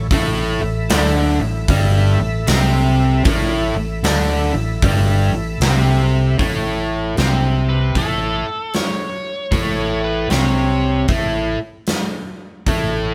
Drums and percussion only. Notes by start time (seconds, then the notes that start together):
0.11 kick, open hi-hat
0.89 snare, open hi-hat
1.68 kick, open hi-hat
2.47 snare, open hi-hat
3.25 kick, open hi-hat
4.04 snare, open hi-hat
4.82 kick, open hi-hat
5.61 snare, open hi-hat
6.39 kick, open hi-hat
7.17 snare, open hi-hat
7.95 kick, open hi-hat
8.73 snare, open hi-hat
9.52 kick, open hi-hat
10.30 snare, open hi-hat
11.08 kick, open hi-hat
11.86 snare, open hi-hat
12.66 kick, open hi-hat